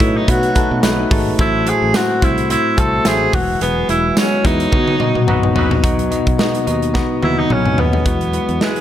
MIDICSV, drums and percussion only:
0, 0, Header, 1, 2, 480
1, 0, Start_track
1, 0, Tempo, 555556
1, 1203, Time_signature, 4, 2, 24, 8
1, 7609, End_track
2, 0, Start_track
2, 0, Title_t, "Drums"
2, 2, Note_on_c, 9, 36, 82
2, 2, Note_on_c, 9, 42, 71
2, 88, Note_off_c, 9, 36, 0
2, 89, Note_off_c, 9, 42, 0
2, 243, Note_on_c, 9, 36, 93
2, 243, Note_on_c, 9, 42, 95
2, 330, Note_off_c, 9, 36, 0
2, 330, Note_off_c, 9, 42, 0
2, 371, Note_on_c, 9, 42, 53
2, 457, Note_off_c, 9, 42, 0
2, 479, Note_on_c, 9, 42, 64
2, 482, Note_on_c, 9, 36, 91
2, 565, Note_off_c, 9, 42, 0
2, 569, Note_off_c, 9, 36, 0
2, 718, Note_on_c, 9, 38, 121
2, 719, Note_on_c, 9, 54, 66
2, 720, Note_on_c, 9, 42, 97
2, 804, Note_off_c, 9, 38, 0
2, 806, Note_off_c, 9, 54, 0
2, 807, Note_off_c, 9, 42, 0
2, 959, Note_on_c, 9, 46, 78
2, 960, Note_on_c, 9, 36, 96
2, 1046, Note_off_c, 9, 36, 0
2, 1046, Note_off_c, 9, 46, 0
2, 1199, Note_on_c, 9, 42, 85
2, 1201, Note_on_c, 9, 36, 108
2, 1285, Note_off_c, 9, 42, 0
2, 1287, Note_off_c, 9, 36, 0
2, 1439, Note_on_c, 9, 42, 69
2, 1525, Note_off_c, 9, 42, 0
2, 1677, Note_on_c, 9, 42, 80
2, 1678, Note_on_c, 9, 38, 122
2, 1678, Note_on_c, 9, 54, 66
2, 1764, Note_off_c, 9, 38, 0
2, 1764, Note_off_c, 9, 42, 0
2, 1764, Note_off_c, 9, 54, 0
2, 1920, Note_on_c, 9, 42, 71
2, 1921, Note_on_c, 9, 36, 86
2, 2006, Note_off_c, 9, 42, 0
2, 2008, Note_off_c, 9, 36, 0
2, 2054, Note_on_c, 9, 42, 48
2, 2140, Note_off_c, 9, 42, 0
2, 2162, Note_on_c, 9, 42, 92
2, 2248, Note_off_c, 9, 42, 0
2, 2399, Note_on_c, 9, 42, 63
2, 2401, Note_on_c, 9, 36, 94
2, 2485, Note_off_c, 9, 42, 0
2, 2488, Note_off_c, 9, 36, 0
2, 2636, Note_on_c, 9, 38, 118
2, 2638, Note_on_c, 9, 42, 103
2, 2638, Note_on_c, 9, 54, 67
2, 2722, Note_off_c, 9, 38, 0
2, 2724, Note_off_c, 9, 54, 0
2, 2725, Note_off_c, 9, 42, 0
2, 2880, Note_on_c, 9, 46, 75
2, 2881, Note_on_c, 9, 36, 110
2, 2966, Note_off_c, 9, 46, 0
2, 2967, Note_off_c, 9, 36, 0
2, 3121, Note_on_c, 9, 42, 92
2, 3207, Note_off_c, 9, 42, 0
2, 3360, Note_on_c, 9, 42, 70
2, 3446, Note_off_c, 9, 42, 0
2, 3601, Note_on_c, 9, 38, 115
2, 3601, Note_on_c, 9, 42, 79
2, 3601, Note_on_c, 9, 54, 67
2, 3687, Note_off_c, 9, 42, 0
2, 3688, Note_off_c, 9, 38, 0
2, 3688, Note_off_c, 9, 54, 0
2, 3842, Note_on_c, 9, 36, 85
2, 3842, Note_on_c, 9, 42, 73
2, 3928, Note_off_c, 9, 36, 0
2, 3928, Note_off_c, 9, 42, 0
2, 3974, Note_on_c, 9, 42, 49
2, 4061, Note_off_c, 9, 42, 0
2, 4079, Note_on_c, 9, 48, 57
2, 4083, Note_on_c, 9, 36, 92
2, 4166, Note_off_c, 9, 48, 0
2, 4169, Note_off_c, 9, 36, 0
2, 4212, Note_on_c, 9, 48, 56
2, 4298, Note_off_c, 9, 48, 0
2, 4319, Note_on_c, 9, 47, 76
2, 4406, Note_off_c, 9, 47, 0
2, 4453, Note_on_c, 9, 47, 65
2, 4539, Note_off_c, 9, 47, 0
2, 4561, Note_on_c, 9, 45, 90
2, 4648, Note_off_c, 9, 45, 0
2, 4695, Note_on_c, 9, 45, 90
2, 4781, Note_off_c, 9, 45, 0
2, 4801, Note_on_c, 9, 43, 102
2, 4888, Note_off_c, 9, 43, 0
2, 4935, Note_on_c, 9, 43, 90
2, 5021, Note_off_c, 9, 43, 0
2, 5043, Note_on_c, 9, 36, 101
2, 5043, Note_on_c, 9, 42, 87
2, 5129, Note_off_c, 9, 36, 0
2, 5130, Note_off_c, 9, 42, 0
2, 5175, Note_on_c, 9, 42, 54
2, 5262, Note_off_c, 9, 42, 0
2, 5284, Note_on_c, 9, 42, 63
2, 5371, Note_off_c, 9, 42, 0
2, 5414, Note_on_c, 9, 42, 43
2, 5417, Note_on_c, 9, 36, 77
2, 5500, Note_off_c, 9, 42, 0
2, 5503, Note_off_c, 9, 36, 0
2, 5523, Note_on_c, 9, 38, 105
2, 5609, Note_off_c, 9, 38, 0
2, 5656, Note_on_c, 9, 42, 51
2, 5743, Note_off_c, 9, 42, 0
2, 5766, Note_on_c, 9, 42, 66
2, 5852, Note_off_c, 9, 42, 0
2, 5896, Note_on_c, 9, 42, 44
2, 5983, Note_off_c, 9, 42, 0
2, 6004, Note_on_c, 9, 38, 53
2, 6005, Note_on_c, 9, 36, 78
2, 6090, Note_off_c, 9, 38, 0
2, 6091, Note_off_c, 9, 36, 0
2, 6243, Note_on_c, 9, 48, 66
2, 6329, Note_off_c, 9, 48, 0
2, 6482, Note_on_c, 9, 47, 81
2, 6569, Note_off_c, 9, 47, 0
2, 6614, Note_on_c, 9, 45, 75
2, 6700, Note_off_c, 9, 45, 0
2, 6722, Note_on_c, 9, 43, 88
2, 6809, Note_off_c, 9, 43, 0
2, 6853, Note_on_c, 9, 43, 82
2, 6940, Note_off_c, 9, 43, 0
2, 6960, Note_on_c, 9, 42, 77
2, 6961, Note_on_c, 9, 36, 90
2, 7047, Note_off_c, 9, 42, 0
2, 7048, Note_off_c, 9, 36, 0
2, 7092, Note_on_c, 9, 42, 47
2, 7179, Note_off_c, 9, 42, 0
2, 7200, Note_on_c, 9, 42, 60
2, 7287, Note_off_c, 9, 42, 0
2, 7332, Note_on_c, 9, 42, 38
2, 7419, Note_off_c, 9, 42, 0
2, 7440, Note_on_c, 9, 38, 92
2, 7526, Note_off_c, 9, 38, 0
2, 7569, Note_on_c, 9, 42, 47
2, 7609, Note_off_c, 9, 42, 0
2, 7609, End_track
0, 0, End_of_file